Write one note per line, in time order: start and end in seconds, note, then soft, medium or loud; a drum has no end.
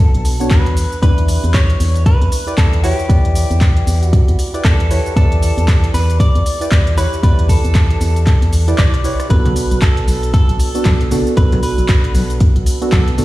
0.00 0.36 B3 medium
0.00 0.37 D4 medium
0.00 0.37 F#4 medium
0.00 0.37 A4 medium
0.00 0.55 A4 loud
0.14 0.52 B1 medium
0.14 closed hi-hat medium
0.25 open hi-hat loud
0.25 cabasa medium
0.40 0.75 B3 medium
0.40 0.76 D4 medium
0.40 0.76 F#4 medium
0.40 0.76 C#5 medium
0.40 closed hi-hat soft
0.40 cabasa soft
0.51 0.86 E2 medium
0.51 0.99 B4 loud
0.51 kick loud
0.51 clap loud
0.51 closed hi-hat medium
0.66 closed hi-hat medium
0.77 open hi-hat loud
0.77 cabasa medium
0.92 cabasa soft
1.02 1.38 E2 loud
1.02 2.44 D4 loud
1.02 2.43 E4 medium
1.02 2.44 G4 medium
1.02 1.54 B4 loud
1.02 2.44 B4 medium
1.02 kick loud
1.02 closed hi-hat medium
1.02 cabasa soft
1.18 closed hi-hat medium
1.28 open hi-hat loud
1.28 cabasa medium
1.44 1.76 E2 medium
1.44 closed hi-hat soft
1.44 cabasa soft
1.54 2.06 C#5 loud
1.54 kick loud
1.54 clap loud
1.54 closed hi-hat medium
1.54 cabasa soft
1.70 closed hi-hat medium
1.80 2.16 E2 medium
1.80 open hi-hat loud
1.80 cabasa medium
1.96 closed hi-hat soft
1.96 cabasa soft
2.06 2.54 B4 loud
2.06 kick loud
2.06 closed hi-hat medium
2.06 cabasa soft
2.21 2.29 E2 medium
2.21 closed hi-hat medium
2.32 open hi-hat loud
2.32 cabasa medium
2.47 2.81 E4 medium
2.47 2.81 G4 medium
2.47 2.81 B4 medium
2.47 2.81 D5 medium
2.47 closed hi-hat soft
2.47 cabasa soft
2.58 2.93 E2 medium
2.58 2.83 A4 loud
2.58 kick loud
2.58 clap loud
2.58 closed hi-hat medium
2.58 cabasa soft
2.73 closed hi-hat medium
2.83 3.07 E4 medium
2.83 4.03 G4 loud
2.83 3.07 G4 medium
2.83 3.07 B4 medium
2.83 3.07 C#5 loud
2.83 open hi-hat medium
2.83 cabasa medium
2.99 cabasa soft
3.09 3.45 E2 loud
3.09 4.50 E4 medium
3.09 4.50 G4 medium
3.09 4.51 B4 medium
3.09 4.51 D5 loud
3.09 kick loud
3.09 closed hi-hat medium
3.09 cabasa soft
3.25 closed hi-hat medium
3.35 open hi-hat loud
3.35 cabasa medium
3.51 3.83 E2 medium
3.51 closed hi-hat soft
3.51 cabasa soft
3.61 kick loud
3.61 clap loud
3.61 closed hi-hat medium
3.61 cabasa soft
3.77 closed hi-hat medium
3.87 4.23 E2 medium
3.87 open hi-hat medium
3.87 cabasa medium
4.03 4.64 F#4 loud
4.03 closed hi-hat soft
4.03 cabasa soft
4.13 kick loud
4.13 closed hi-hat medium
4.13 cabasa soft
4.28 4.36 E2 medium
4.28 closed hi-hat medium
4.39 open hi-hat loud
4.39 cabasa medium
4.54 4.88 E4 medium
4.54 4.88 G4 medium
4.54 4.88 B4 medium
4.54 4.88 D5 medium
4.54 closed hi-hat soft
4.54 cabasa soft
4.65 5.00 E2 medium
4.65 5.15 A4 loud
4.65 kick loud
4.65 clap loud
4.65 closed hi-hat medium
4.65 cabasa soft
4.80 closed hi-hat medium
4.90 5.14 E4 medium
4.90 5.14 G4 medium
4.90 5.14 B4 medium
4.90 5.14 C#5 loud
4.90 open hi-hat medium
4.90 cabasa medium
5.06 cabasa soft
5.16 5.52 E2 loud
5.16 6.57 E4 medium
5.16 6.57 G4 medium
5.16 5.90 A4 loud
5.16 6.58 B4 medium
5.16 6.58 D5 loud
5.16 kick loud
5.16 closed hi-hat medium
5.16 cabasa soft
5.32 closed hi-hat medium
5.42 open hi-hat loud
5.42 cabasa medium
5.58 5.90 E2 medium
5.58 closed hi-hat soft
5.58 cabasa soft
5.68 kick loud
5.68 clap loud
5.68 closed hi-hat medium
5.68 cabasa soft
5.84 closed hi-hat medium
5.94 6.29 E2 medium
5.94 6.18 B4 medium
5.94 open hi-hat medium
5.94 cabasa medium
6.10 closed hi-hat soft
6.10 cabasa soft
6.20 6.97 D5 loud
6.20 kick loud
6.20 closed hi-hat medium
6.20 cabasa soft
6.35 6.43 E2 medium
6.35 closed hi-hat medium
6.46 open hi-hat loud
6.46 cabasa medium
6.61 6.95 E4 medium
6.61 6.95 G4 medium
6.61 6.95 B4 medium
6.61 6.95 D5 medium
6.61 closed hi-hat soft
6.61 cabasa soft
6.72 7.07 E2 medium
6.72 kick loud
6.72 clap loud
6.72 closed hi-hat medium
6.72 cabasa soft
6.87 closed hi-hat medium
6.97 7.21 E4 medium
6.97 7.21 G4 medium
6.97 7.22 B4 medium
6.97 7.21 B4 medium
6.97 7.21 C#5 loud
6.97 open hi-hat medium
6.97 cabasa medium
7.13 cabasa soft
7.23 7.59 E2 loud
7.23 8.64 E4 medium
7.23 8.64 G4 medium
7.23 7.50 B4 loud
7.23 8.65 B4 medium
7.23 8.65 D5 loud
7.23 kick loud
7.23 closed hi-hat medium
7.23 cabasa soft
7.39 closed hi-hat medium
7.49 8.82 A4 loud
7.49 kick medium
7.49 open hi-hat loud
7.49 cabasa medium
7.64 7.97 E2 medium
7.64 closed hi-hat soft
7.64 cabasa soft
7.75 kick loud
7.75 clap loud
7.75 closed hi-hat medium
7.75 cabasa soft
7.90 closed hi-hat medium
8.01 8.36 E2 medium
8.01 open hi-hat medium
8.01 cabasa medium
8.16 closed hi-hat soft
8.16 cabasa soft
8.27 kick loud
8.27 clap medium
8.27 closed hi-hat medium
8.27 cabasa soft
8.42 8.74 E2 medium
8.42 closed hi-hat medium
8.53 open hi-hat loud
8.53 cabasa medium
8.68 9.02 E4 medium
8.68 9.02 G4 medium
8.68 9.02 B4 medium
8.68 9.02 D5 medium
8.68 closed hi-hat soft
8.68 cabasa soft
8.78 9.14 B1 medium
8.78 9.30 D5 loud
8.78 kick loud
8.78 cross-stick medium
8.78 clap loud
8.78 closed hi-hat medium
8.78 cabasa soft
8.94 cross-stick medium
8.94 closed hi-hat medium
9.04 9.28 E4 medium
9.04 9.28 G4 medium
9.04 9.28 B4 medium
9.04 9.28 C#5 loud
9.04 open hi-hat medium
9.04 cabasa medium
9.20 cross-stick medium
9.20 closed hi-hat soft
9.20 cabasa soft
9.29 9.66 B1 loud
9.29 10.71 B3 medium
9.29 10.71 D4 medium
9.29 10.71 F#4 medium
9.29 10.72 A4 loud
9.29 9.78 B4 loud
9.29 kick loud
9.29 closed hi-hat medium
9.29 cabasa soft
9.46 closed hi-hat medium
9.46 high conga medium
9.46 low conga medium
9.56 open hi-hat loud
9.56 cabasa medium
9.71 10.04 B1 medium
9.71 closed hi-hat soft
9.71 cabasa soft
9.82 10.33 A4 medium
9.82 kick loud
9.82 clap loud
9.82 closed hi-hat medium
9.82 cabasa soft
9.97 closed hi-hat medium
10.08 10.43 B1 medium
10.08 open hi-hat medium
10.08 cabasa medium
10.23 closed hi-hat soft
10.23 cabasa soft
10.34 11.33 A4 loud
10.34 kick loud
10.34 closed hi-hat medium
10.34 cabasa soft
10.49 10.57 B1 medium
10.49 closed hi-hat medium
10.60 open hi-hat loud
10.60 cabasa medium
10.75 11.09 B3 medium
10.75 11.09 D4 medium
10.75 11.09 F#4 medium
10.75 11.09 A4 medium
10.75 closed hi-hat soft
10.75 cabasa soft
10.85 11.21 B1 medium
10.85 kick loud
10.85 clap loud
10.85 closed hi-hat medium
10.85 high conga loud
10.85 cabasa soft
11.01 closed hi-hat medium
11.11 11.34 B3 medium
11.11 11.35 D4 medium
11.11 11.35 F#4 medium
11.11 11.35 A4 loud
11.11 open hi-hat medium
11.11 low conga medium
11.11 cabasa medium
11.27 cabasa soft
11.36 11.73 B1 loud
11.36 12.78 B3 medium
11.36 12.78 D4 medium
11.36 12.78 F#4 medium
11.36 12.79 A4 loud
11.36 11.62 B4 loud
11.36 kick loud
11.36 closed hi-hat medium
11.36 cabasa soft
11.52 closed hi-hat medium
11.52 high conga loud
11.52 low conga medium
11.63 12.37 B4 medium
11.63 open hi-hat loud
11.63 cabasa medium
11.78 12.11 B1 medium
11.78 closed hi-hat soft
11.78 cabasa soft
11.89 kick loud
11.89 clap loud
11.89 closed hi-hat medium
11.89 cabasa soft
12.04 closed hi-hat medium
12.15 12.50 B1 medium
12.15 open hi-hat loud
12.15 high conga medium
12.15 cabasa medium
12.30 closed hi-hat soft
12.30 cabasa soft
12.40 kick loud
12.40 closed hi-hat medium
12.40 cabasa soft
12.56 12.64 B1 medium
12.56 closed hi-hat medium
12.66 open hi-hat loud
12.66 cabasa medium
12.81 13.15 B3 medium
12.81 13.16 D4 medium
12.81 13.16 F#4 medium
12.81 13.16 A4 medium
12.81 closed hi-hat soft
12.81 cabasa soft
12.92 13.25 B1 medium
12.92 13.25 A4 loud
12.92 kick loud
12.92 clap loud
12.92 closed hi-hat medium
12.92 high conga loud
12.92 cabasa soft
13.08 closed hi-hat medium
13.18 13.25 B3 medium
13.18 13.25 D4 medium
13.18 13.25 F#4 medium
13.18 13.25 A4 loud
13.18 open hi-hat loud
13.18 low conga medium
13.18 cabasa medium